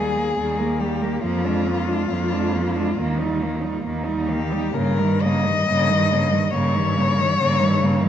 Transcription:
0.00 0.28 D#2 medium
0.00 0.19 G3 medium
0.00 0.16 A#3 soft
0.00 0.82 G#4 medium
0.15 0.37 G3 soft
0.15 0.36 A#3 soft
0.36 1.13 D#2 medium
0.36 0.59 G3 soft
0.36 0.61 A#3 medium
0.58 0.82 G3 soft
0.58 0.82 A#3 soft
0.80 1.03 G3 soft
0.80 1.03 A#3 medium
0.80 1.23 G4 medium
1.01 1.22 G3 medium
1.01 1.23 A#3 medium
1.23 1.99 F2 medium
1.23 1.46 F3 medium
1.23 1.47 A#3 medium
1.23 3.80 F4 medium
1.45 1.67 G#3 medium
1.45 1.70 D4 soft
1.66 1.89 F3 soft
1.66 1.90 A#3 medium
1.88 2.09 G#3 medium
1.88 2.10 D4 soft
2.09 2.87 F2 medium
2.09 2.33 F3 medium
2.09 2.34 A#3 medium
2.32 2.56 G#3 medium
2.32 2.55 D4 medium
2.53 2.79 F3 medium
2.53 2.77 A#3 medium
2.76 2.98 G#3 medium
2.76 2.97 D4 medium
2.97 3.74 D#2 medium
2.97 3.22 D#3 medium
2.97 3.22 A#3 medium
3.20 3.43 G3 medium
3.20 3.45 D#4 medium
3.41 3.65 D#3 medium
3.41 3.64 A#3 medium
3.62 3.85 G3 medium
3.62 3.82 D#4 medium
3.82 4.63 D#2 medium
3.82 4.08 D#3 medium
3.82 4.06 A#3 medium
4.05 4.30 G3 medium
4.05 4.31 D#4 medium
4.27 4.53 D#3 medium
4.27 4.54 A#3 medium
4.27 4.76 G4 medium
4.51 4.74 G3 medium
4.51 4.74 D#4 medium
4.74 5.58 G2 medium
4.74 5.01 C#3 medium
4.74 5.00 A#3 medium
4.74 5.23 A#4 medium
4.99 5.24 D#3 medium
4.99 5.26 G3 medium
5.22 5.47 C#3 medium
5.22 5.46 A#3 medium
5.22 6.52 D#5 loud
5.45 5.68 D#3 soft
5.45 5.68 G3 medium
5.67 6.43 G2 medium
5.67 5.91 C#3 medium
5.67 5.91 A#3 medium
5.89 6.13 D#3 medium
5.89 6.13 G3 medium
6.11 6.34 C#3 medium
6.11 6.33 A#3 medium
6.31 6.53 D#3 medium
6.31 6.53 G3 medium
6.51 7.29 G2 medium
6.51 6.76 C#3 medium
6.51 6.77 A#3 medium
6.51 8.09 C#5 loud
6.74 6.97 D#3 medium
6.74 6.99 G3 medium
6.96 7.20 C#3 medium
6.96 7.22 A#3 medium
7.18 7.39 D#3 medium
7.18 7.41 G3 medium
7.39 8.09 G2 medium
7.39 7.60 C#3 medium
7.39 7.63 A#3 medium
7.59 7.81 D#3 medium
7.59 7.84 G3 medium
7.80 8.02 C#3 medium
7.80 8.06 A#3 medium
8.00 8.09 D#3 medium
8.04 8.09 G3 medium

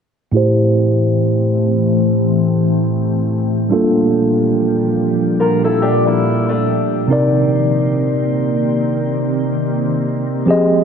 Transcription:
0.31 3.66 A2 medium
0.31 3.68 E3 medium
0.31 3.67 A3 medium
0.31 3.68 A3 medium
0.31 3.68 C4 medium
0.31 3.67 E4 medium
0.31 10.43 G4 medium
0.31 3.68 G4 medium
0.37 3.69 C5 medium
3.70 7.06 A#2 medium
3.70 7.06 F3 medium
3.70 7.04 G3 medium
3.70 7.05 D4 medium
3.70 7.06 D4 medium
3.70 7.06 F4 medium
3.70 7.06 A4 medium
3.74 7.07 A#3 medium
5.40 5.63 F4 medium
5.40 5.63 A#4 medium
5.64 5.82 E4 medium
5.64 5.81 A4 medium
5.82 6.06 D4 medium
5.82 6.05 G4 medium
6.07 6.47 A#3 medium
6.07 6.47 E4 medium
6.49 7.06 A3 medium
6.49 7.06 D4 medium
7.08 10.42 C3 medium
7.08 10.84 D#3 medium
7.08 10.44 A#3 medium
7.08 10.43 C4 medium
7.08 10.84 C4 medium
7.08 10.44 D#4 medium
7.08 10.44 A#4 medium
7.13 10.45 D5 medium
10.46 10.84 F3 medium
10.46 10.84 G#3 medium
10.46 10.84 C4 medium
10.46 10.84 F4 medium
10.46 10.84 G4 medium
10.46 10.84 G#4 medium
10.51 10.84 D#5 medium

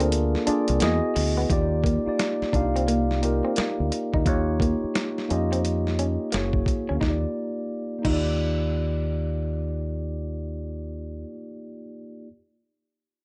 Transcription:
0.00 0.35 D2 loud
0.00 0.46 A#3 loud
0.00 0.09 C4 medium
0.00 0.47 D4 loud
0.00 0.47 F4 loud
0.00 0.48 G#4 loud
0.00 0.82 A4 medium
0.00 0.45 A#4 loud
0.00 0.49 D5 loud
0.00 closed hi-hat medium
0.12 closed hi-hat medium
0.35 snare soft
0.46 0.80 A#3 medium
0.46 0.81 D4 medium
0.46 0.63 D4 medium
0.46 0.81 F4 medium
0.46 0.81 G#4 medium
0.46 0.82 D5 medium
0.46 muted fingered electric bass stroke soft
0.46 closed hi-hat medium
0.68 0.79 C2 loud
0.68 closed hi-hat medium
0.80 1.00 E2 loud
0.80 0.98 A#3 medium
0.80 1.44 B3 loud
0.80 1.44 E4 medium
0.80 1.44 F#4 medium
0.80 1.45 G#4 medium
0.80 1.45 D#5 loud
0.80 snare loud
0.80 closed hi-hat medium
1.16 1.44 D2 medium
1.16 muted clean electric guitar stroke soft
1.16 open hi-hat medium
1.37 1.47 B3 medium
1.49 1.97 D#2 loud
1.49 1.98 A#3 medium
1.49 1.99 D#4 medium
1.49 1.99 F4 medium
1.49 2.00 G4 loud
1.49 2.00 D5 loud
1.49 kick loud
1.49 closed hi-hat medium
1.84 2.00 A#3 medium
1.84 kick medium
1.84 closed hi-hat medium
2.05 2.48 A#3 medium
2.05 2.49 D#4 medium
2.05 2.49 F4 medium
2.05 2.50 G4 medium
2.05 2.50 D5 medium
2.05 muted fingered electric bass stroke soft
2.19 muted clean electric guitar stroke soft
2.19 snare loud
2.19 closed hi-hat medium
2.42 muted fingered electric bass stroke soft
2.42 snare soft
2.52 3.40 C2 medium
2.52 3.16 A#3 medium
2.52 2.70 D4 medium
2.52 3.16 D#4 medium
2.52 3.17 F4 medium
2.52 3.17 G4 medium
2.52 3.18 F5 medium
2.52 kick medium
2.52 closed hi-hat medium
2.76 2.85 C4 medium
2.76 closed hi-hat soft
2.88 3.04 A#3 medium
2.88 closed hi-hat medium
3.11 snare soft
3.21 4.17 A#3 medium
3.21 4.17 D#4 medium
3.21 4.17 F4 medium
3.21 4.18 G4 medium
3.21 4.18 A#4 medium
3.21 muted clean electric guitar stroke soft
3.21 closed hi-hat medium
3.45 3.54 C4 medium
3.56 3.73 A#3 medium
3.56 muted fingered electric bass stroke soft
3.56 snare loud
3.56 closed hi-hat medium
3.80 3.90 D2 medium
3.92 muted clean electric guitar stroke soft
3.92 closed hi-hat medium
4.14 4.27 D2 medium
4.14 4.23 D#4 medium
4.14 kick medium
4.25 4.72 D#2 medium
4.25 5.20 A#3 loud
4.25 5.21 D#4 medium
4.25 5.21 F4 medium
4.25 5.21 G4 medium
4.25 5.22 C#5 loud
4.25 kick medium
4.25 closed hi-hat medium
4.60 4.77 A#3 medium
4.60 kick medium
4.60 closed hi-hat medium
4.84 muted fingered electric bass stroke soft
4.95 muted clean electric guitar stroke soft
4.95 snare medium
4.95 closed hi-hat medium
5.18 snare soft
5.29 6.17 F2 medium
5.29 6.31 A#3 medium
5.29 5.46 C#4 medium
5.29 6.33 D#4 medium
5.29 6.33 F4 medium
5.29 6.34 G4 medium
5.29 6.34 D#5 medium
5.29 closed hi-hat medium
5.52 5.61 C4 medium
5.52 closed hi-hat soft
5.65 closed hi-hat medium
5.87 snare soft
5.99 6.15 C#4 medium
5.99 closed hi-hat medium
6.32 6.62 F#1 medium
6.32 6.94 A#3 medium
6.32 6.49 A#3 medium
6.32 6.96 E4 medium
6.32 6.96 F#4 medium
6.32 6.97 G#4 medium
6.32 6.97 C#5 medium
6.32 snare loud
6.32 closed hi-hat medium
6.53 kick medium
6.66 muted clean electric guitar stroke soft
6.66 kick medium
6.66 closed hi-hat medium
6.89 7.00 D2 medium
6.89 6.98 C#4 medium
6.95 7.21 A#3 medium
6.95 7.23 D#4 medium
7.01 7.24 D#2 medium
7.01 7.16 D#4 medium
7.01 7.25 F4 medium
7.01 kick medium
7.01 snare medium
7.06 7.27 G4 medium
7.06 7.29 D5 medium
7.99 11.20 A#3 medium
7.99 11.22 D#4 medium
8.05 11.24 D#2 medium
8.05 8.19 D#4 medium
8.05 11.24 F4 medium
8.05 kick medium
8.05 crash medium
8.10 11.26 G4 medium
8.10 11.27 D5 medium

